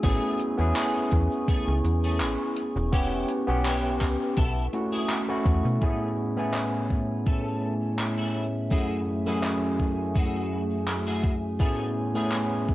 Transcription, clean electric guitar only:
0.03 A3 C#4 G#4
0.75 A3 C#4 G#4
1.48 A3 C#4 G#4
2.04 A3 C#4 G#4
2.56 muted clean electric guitar stroke
2.93 C#4 E4 G4
3.65 C#4 E4 G4
4.37 B3 E4 A4
4.93 B3 E4 G#4
5.46 muted clean electric guitar stroke
5.81 A3 C#4 G#4
6.37 A3 C#4 G#4
6.90 muted clean electric guitar stroke
7.26 A3 C#4 A4
8.18 A3 C#4 E4
8.70 A3 E4 F#4 G#4
9.26 A3 E4 F#4 G#4
9.79 muted clean electric guitar stroke
10.15 A3 E4 F#4 G#4
11.07 A3 E4 F#4 G#4
11.59 A3 C#4 G#4
12.15 A3 C#4 G#4
12.68 muted clean electric guitar stroke

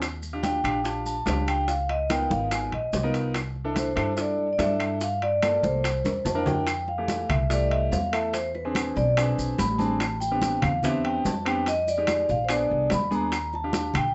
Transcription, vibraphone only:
0.43 G5
0.85 A5
1.06 A5
1.48 G5
1.69 F5
1.90 D#5
2.11 G5
2.31 F5
2.53 G#5
2.74 D#5
3.78 C5
4.20 D5
4.53 D5
4.59 E5
5.03 F5
5.23 D5
5.64 C5
6.25 A5
6.38 F#5
6.46 G5
6.89 F5
7.29 E5
7.51 D5
7.67 D#5 E5
7.92 F5
8.13 E5
8.33 C5
8.55 B4
8.96 D5
9.17 B4
9.59 B5
9.78 A5
10.20 G5
10.62 F5
10.83 E5
11.04 G5
11.26 A5
11.48 G5
11.68 D#5
11.89 D5
12.31 F5
12.45 C5
12.51 D5
12.94 B5
13.14 A#5
13.55 A5
13.97 G5

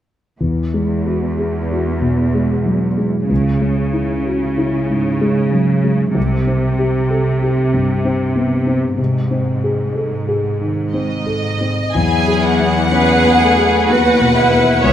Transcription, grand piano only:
0.41 E2
0.74 G#3
1.06 F#4
1.39 G#4
1.71 F#4
2.02 B2
2.35 G#3
2.66 F#3
2.98 G#3
3.29 C#2
3.61 G#3
3.93 E4
4.25 F#4
4.58 E4
4.90 G#2
5.21 G#3
5.53 F#3
5.84 G#3
6.15 C2
6.47 C4
6.78 G4
7.10 A4
7.42 G4
7.74 G2
8.05 C4
8.36 B3
8.67 C4
8.98 C3
9.31 C4
9.64 G#4
9.95 A4
10.28 G#4
10.61 D#3
10.94 C4
11.26 A4
11.61 C4
11.95 E2
12.28 G#4
12.60 B3
12.92 C#4
13.25 B3
13.57 G#4
13.89 B3
14.21 B2
14.53 B3
14.84 C#2

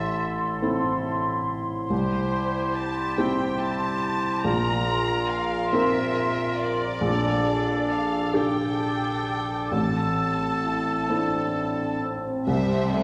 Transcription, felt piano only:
Already playing: A1
0.62 C4 E4 A4
1.90 C2
3.17 C4 E4 G4
4.45 A#1
5.73 C4 F4 A#4
7.01 A#1
8.34 D4 G4 A4
9.72 A1
11.09 C4 E4 A4
12.47 C2

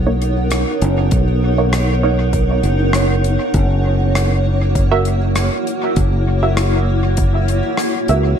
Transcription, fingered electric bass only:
Already playing: B1
0.82 F#1
1.12 B1
2.63 F#1
3.54 F#1
5.97 F#1
8.09 C#2

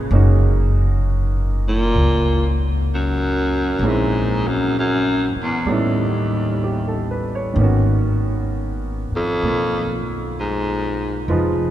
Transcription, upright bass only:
0.11 F#1
1.95 C#2
3.79 A#1
5.36 muted upright bass stroke
5.65 A1
7.56 G#1
9.11 muted upright bass stroke
9.42 B1
11.28 F1

